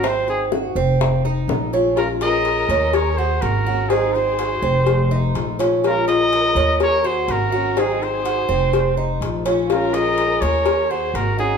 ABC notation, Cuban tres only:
X:1
M:4/4
L:1/8
Q:1/4=124
K:Bbm
V:1 name="Cuban tres"
C2 G C2 E2 D | z A2 D2 G2 G | C2 G C2 E2 D- | D A2 D2 G2 G |
C2 G C2 E2 D- | D A2 D2 G2 G |]